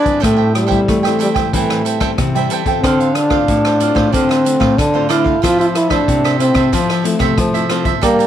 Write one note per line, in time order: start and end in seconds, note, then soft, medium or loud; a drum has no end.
0.00 0.25 D4 loud
0.00 0.20 B4 soft
0.00 0.20 D5 medium
0.05 0.66 G3 medium
0.05 0.66 C4 medium
0.05 0.66 E4 medium
0.05 0.20 G#4 soft
0.05 kick medium
0.05 closed hi-hat soft
0.20 0.85 A2 soft
0.20 0.79 A2 medium
0.20 0.55 A3 loud
0.20 0.37 A4 medium
0.20 0.37 C5 medium
0.20 0.37 E5 medium
0.20 0.35 G5 medium
0.20 kick medium
0.24 cross-stick medium
0.24 closed hi-hat medium
0.36 0.67 C5 soft
0.36 0.67 E5 soft
0.36 0.67 G5 soft
0.55 1.17 G3 medium
0.55 cross-stick medium
0.55 closed hi-hat soft
0.67 0.78 A4 medium
0.67 0.79 C5 medium
0.67 0.79 E5 medium
0.67 0.79 G5 medium
0.71 0.99 G3 medium
0.71 0.99 C4 medium
0.71 0.99 E4 medium
0.71 kick medium
0.71 closed hi-hat soft
0.88 1.51 E3 medium
0.88 1.44 A3 medium
0.88 kick medium
0.88 cross-stick medium
0.88 closed hi-hat medium
1.03 1.33 G3 medium
1.03 1.19 C5 soft
1.03 1.19 E5 medium
1.03 1.19 G5 soft
1.03 cross-stick medium
1.03 closed hi-hat soft
1.07 1.33 C4 medium
1.07 1.33 E4 medium
1.19 1.29 G3 medium
1.19 1.35 A4 medium
1.19 1.35 C5 medium
1.19 1.35 E5 medium
1.19 1.33 G5 medium
1.19 closed hi-hat soft
1.35 1.47 G3 medium
1.35 2.31 A3 medium
1.35 1.48 C4 medium
1.35 1.48 E4 medium
1.35 1.52 C5 soft
1.35 1.52 E5 medium
1.35 1.51 G5 medium
1.35 kick medium
1.35 cross-stick medium
1.35 closed hi-hat soft
1.53 2.15 A2 medium
1.53 1.81 E3 medium
1.53 1.97 G3 medium
1.53 1.97 C4 medium
1.53 1.97 E4 medium
1.53 1.84 A4 medium
1.53 1.84 C5 medium
1.53 1.85 E5 medium
1.53 1.86 G5 medium
1.53 kick medium
1.53 closed hi-hat medium
1.70 cross-stick medium
1.70 closed hi-hat soft
1.85 1.99 A4 soft
1.85 2.00 C5 medium
1.85 2.01 E5 medium
1.85 2.01 G5 medium
1.85 closed hi-hat medium
2.00 2.29 G3 medium
2.00 2.29 C4 medium
2.00 2.29 E4 medium
2.00 2.10 A4 medium
2.00 2.10 C5 medium
2.00 2.11 E5 medium
2.00 2.11 G5 medium
2.00 kick medium
2.00 cross-stick medium
2.00 closed hi-hat soft
2.18 2.46 C3 medium
2.18 2.80 E3 medium
2.18 kick medium
2.18 cross-stick medium
2.18 closed hi-hat medium
2.35 2.62 G3 medium
2.35 2.62 C4 medium
2.35 2.63 E4 medium
2.35 2.50 C5 soft
2.35 2.50 E5 medium
2.35 2.50 G5 medium
2.35 closed hi-hat soft
2.50 2.66 A4 medium
2.50 2.66 C5 medium
2.50 2.66 E5 medium
2.50 2.66 G5 medium
2.50 closed hi-hat soft
2.65 3.26 C4 medium
2.65 3.26 F4 medium
2.65 3.27 A4 medium
2.65 2.83 E5 soft
2.65 2.82 G5 soft
2.65 kick medium
2.65 closed hi-hat soft
2.70 2.83 C5 soft
2.82 3.45 D3 medium
2.82 3.39 D3 medium
2.82 3.17 C4 loud
2.82 2.98 D4 medium
2.82 2.99 A4 medium
2.82 2.99 C5 medium
2.82 2.99 F5 medium
2.82 kick medium
2.82 cross-stick medium
2.82 closed hi-hat medium
3.00 3.32 A4 soft
3.00 3.31 C5 medium
3.00 3.30 F5 medium
3.00 closed hi-hat soft
3.15 4.14 D4 medium
3.15 cross-stick medium
3.15 closed hi-hat soft
3.30 3.75 A3 medium
3.30 3.75 C4 medium
3.30 3.75 F4 medium
3.30 3.64 A4 medium
3.30 3.63 C5 medium
3.30 3.63 F5 medium
3.30 kick medium
3.30 cross-stick medium
3.48 3.90 A2 medium
3.48 4.10 A2 medium
3.48 kick medium
3.48 closed hi-hat medium
3.65 3.79 A4 soft
3.65 3.80 C5 soft
3.65 3.80 F5 medium
3.65 cross-stick medium
3.65 closed hi-hat soft
3.80 4.40 A3 medium
3.80 4.41 C4 medium
3.80 3.95 D4 medium
3.80 4.41 F4 medium
3.80 3.95 A4 medium
3.80 3.95 C5 medium
3.80 3.94 F5 medium
3.80 closed hi-hat soft
3.95 4.10 A2 medium
3.95 4.12 A4 medium
3.95 4.11 C5 medium
3.95 4.11 F5 medium
3.95 kick medium
3.95 cross-stick medium
4.12 4.55 D3 medium
4.12 4.75 D3 medium
4.12 4.79 C4 medium
4.12 4.28 D4 medium
4.12 4.28 A4 medium
4.12 4.28 C5 medium
4.12 4.28 F5 medium
4.12 kick medium
4.12 closed hi-hat medium
4.29 4.44 A4 soft
4.29 4.45 C5 soft
4.29 4.44 F5 medium
4.29 cross-stick medium
4.29 closed hi-hat soft
4.45 4.76 A3 medium
4.45 4.76 C4 medium
4.45 4.77 F4 medium
4.45 muted cavaquinho stroke soft
4.45 closed hi-hat medium
4.60 4.74 A2 medium
4.60 4.77 A4 medium
4.60 4.76 C5 medium
4.60 4.76 F5 medium
4.60 kick medium
4.60 cross-stick medium
4.78 5.40 A2 medium
4.78 5.34 D3 loud
4.78 5.09 D4 loud
4.78 muted cavaquinho stroke soft
4.78 kick medium
4.78 cross-stick medium
4.78 closed hi-hat medium
4.94 5.06 A3 medium
4.94 5.06 C4 medium
4.94 5.06 F4 medium
4.94 5.08 A4 soft
4.94 5.09 C5 medium
4.94 5.09 F5 medium
5.09 5.29 A3 medium
5.09 5.29 C4 medium
5.09 5.25 D4 medium
5.09 5.45 E4 loud
5.09 5.30 F4 medium
5.09 5.25 A4 medium
5.09 5.25 C5 medium
5.09 5.23 F5 medium
5.09 cross-stick medium
5.09 closed hi-hat soft
5.24 5.42 A4 soft
5.24 5.41 C5 soft
5.24 5.40 F5 soft
5.24 kick medium
5.42 6.05 F3 soft
5.42 5.99 F3 medium
5.42 5.73 A3 soft
5.42 5.74 C4 medium
5.42 5.74 E4 medium
5.42 5.57 F4 medium
5.42 5.60 F4 loud
5.42 5.58 A4 medium
5.42 5.58 C5 medium
5.42 5.57 E5 medium
5.42 kick medium
5.42 cross-stick medium
5.42 closed hi-hat medium
5.58 5.67 F4 loud
5.58 5.91 A4 soft
5.58 5.90 C5 soft
5.58 5.89 E5 soft
5.58 closed hi-hat soft
5.75 5.94 E4 loud
5.75 cross-stick medium
5.75 closed hi-hat medium
5.89 6.34 A3 medium
5.89 6.34 C4 medium
5.89 6.40 D4 medium
5.89 6.35 E4 medium
5.89 6.23 A4 medium
5.89 6.23 C5 medium
5.89 6.22 E5 medium
5.89 kick medium
5.89 cross-stick medium
5.89 closed hi-hat soft
6.08 6.70 C3 medium
6.08 6.50 C3 medium
6.08 kick medium
6.08 closed hi-hat medium
6.24 6.39 A4 soft
6.24 6.40 C5 medium
6.24 6.39 E5 medium
6.24 cross-stick medium
6.24 closed hi-hat soft
6.39 6.82 A3 medium
6.39 6.82 C4 medium
6.39 6.76 C4 medium
6.39 6.82 E4 medium
6.39 6.55 F4 soft
6.39 6.55 A4 medium
6.39 6.56 C5 medium
6.39 6.55 E5 medium
6.39 closed hi-hat soft
6.54 6.69 C3 medium
6.54 6.72 A4 medium
6.54 6.72 C5 medium
6.54 6.71 E5 medium
6.54 kick medium
6.54 cross-stick medium
6.54 closed hi-hat soft
6.72 7.35 F3 medium
6.72 7.14 F3 loud
6.72 6.88 F4 medium
6.72 6.88 A4 medium
6.72 6.88 C5 medium
6.72 6.89 E5 medium
6.72 kick medium
6.72 closed hi-hat medium
6.90 7.05 A4 soft
6.90 7.05 C5 soft
6.90 7.05 E5 medium
6.90 cross-stick medium
6.90 closed hi-hat soft
7.04 7.48 A3 medium
7.04 7.67 A3 medium
7.04 7.49 C4 medium
7.04 7.48 E4 medium
7.04 muted cavaquinho stroke soft
7.04 closed hi-hat medium
7.19 7.34 C3 medium
7.19 7.37 C5 medium
7.19 7.36 E5 medium
7.19 kick medium
7.19 cross-stick medium
7.19 closed hi-hat soft
7.23 7.37 A4 medium
7.37 7.99 C3 medium
7.37 7.93 F3 loud
7.37 muted cavaquinho stroke soft
7.37 kick medium
7.37 cross-stick medium
7.37 closed hi-hat medium
7.53 7.65 A3 medium
7.53 7.65 C4 medium
7.53 7.65 E4 medium
7.53 7.69 A4 soft
7.53 7.69 C5 soft
7.53 7.69 E5 medium
7.53 closed hi-hat soft
7.69 7.89 A3 medium
7.69 7.90 C4 medium
7.69 7.90 E4 medium
7.69 7.85 F4 medium
7.69 7.85 A4 medium
7.69 7.85 C5 medium
7.69 7.84 E5 medium
7.69 cross-stick medium
7.69 closed hi-hat soft
7.85 8.00 A4 soft
7.85 8.01 C5 soft
7.85 8.01 E5 medium
7.85 kick medium
7.85 closed hi-hat soft
8.01 8.27 G3 loud
8.01 8.27 G3 soft
8.01 8.27 A#3 loud
8.01 8.27 A#3 medium
8.01 8.27 D4 medium
8.01 8.17 A4 medium
8.01 8.27 A4 medium
8.01 8.18 D5 medium
8.01 8.18 G5 medium
8.01 8.18 A#5 medium
8.01 kick medium
8.01 cross-stick medium
8.01 closed hi-hat medium
8.19 8.27 D5 soft
8.19 8.27 G5 soft
8.19 8.27 A#5 medium
8.19 closed hi-hat soft